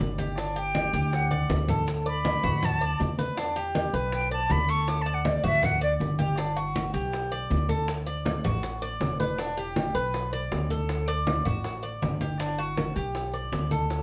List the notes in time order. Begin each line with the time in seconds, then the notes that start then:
Already playing: D5
0.00 G1, high bongo, low bongo, high conga, maracas
0.18 G4, high conga, maracas
0.37 D4, high bongo, high conga, maracas
0.56 G4 G5, high conga, maracas
0.75 high bongo, high conga, maracas
0.93 D2 G4, high bongo, high conga, maracas
1.13 F#5, high bongo, maracas
1.31 D5, high bongo, high conga, maracas
1.50 D2, high bongo, low bongo, low conga, maracas
1.68 A4, low conga, maracas
1.87 high bongo, high conga, maracas
2.06 D5 B5, high conga, maracas
2.25 high bongo, high conga, maracas
2.43 D2 F#4, high bongo, high conga, low conga, maracas
2.63 A5, high bongo, high conga, low conga, maracas
2.81 D5, high bongo, high conga, maracas
3.00 E2, high bongo, low bongo, high conga, maracas
3.19 B4, high conga, maracas
3.37 D4, high bongo, high conga, maracas
3.56 G4, high conga, maracas
3.75 high bongo, high conga, maracas
3.93 B1 B4, high bongo, high conga, maracas
4.12 G5, high bongo, high conga, maracas
4.31 D5 A5, high bongo, high conga, maracas
4.50 D2 B5, high bongo, low bongo, high conga, maracas
4.68 A4 C#6, maracas
4.87 D6, high bongo, high conga, maracas
5.02 A5
5.06 D5, high conga, maracas
5.14 F#5
5.25 D5, high bongo, high conga, maracas
5.44 D2 F#4 E5, high bongo, high conga, low conga, maracas
5.62 F#5, high bongo, high conga, low conga, maracas
5.81 D5, high bongo, high conga, maracas
6.00 G1, high bongo, low bongo, high conga, maracas
6.19 G4, high conga, maracas
6.38 D4, high bongo, maracas
6.56 F#4, high conga, maracas
6.75 high bongo, high conga, maracas
6.94 B1 G4, high bongo, high conga, maracas
7.13 high bongo, high conga, maracas
7.32 D5, high bongo, high conga, maracas
7.50 D2, high bongo, low bongo, high conga, maracas
7.69 A4, high conga, maracas
7.88 high bongo, high conga, maracas
8.07 D5, high bongo, high conga, maracas
8.25 high bongo, high conga, maracas
8.44 A1 F#4, high bongo, low conga, maracas
8.63 high bongo, high conga, maracas
8.82 D5, high bongo, high conga, maracas
9.00 E1, high bongo, low bongo, high conga, maracas
9.20 B4, high conga, maracas
9.38 D4, high bongo, high conga, maracas
9.57 G4, high bongo, high conga, maracas
9.76 high bongo, high conga, maracas
9.95 B1 B4, high conga, maracas
10.14 high bongo, high conga, maracas
10.33 D5, high bongo, high conga, maracas
10.51 D2, high bongo, low bongo, high conga, maracas
10.71 A4, high bongo, high conga, maracas
10.89 high bongo, high conga, maracas
11.08 D5, high bongo, high conga, maracas
11.27 high bongo, high conga, maracas
11.45 A1 F#4, high bongo, low conga, maracas
11.64 high bongo, high conga, maracas
11.83 D5, high bongo, high conga, maracas
12.02 G1, high bongo, low bongo, high conga, maracas
12.21 G4, high conga, maracas
12.40 D4, high bongo, high conga, maracas
12.58 F#4, high bongo, high conga, maracas
12.77 high bongo, high conga, maracas
12.96 B1 G4, high conga, maracas
13.15 high bongo, high conga, maracas
13.33 D5, high bongo, high conga, maracas
13.52 D2, high bongo, low bongo, high conga, maracas
13.71 A4, high bongo, high conga, maracas
13.90 high bongo, high conga, maracas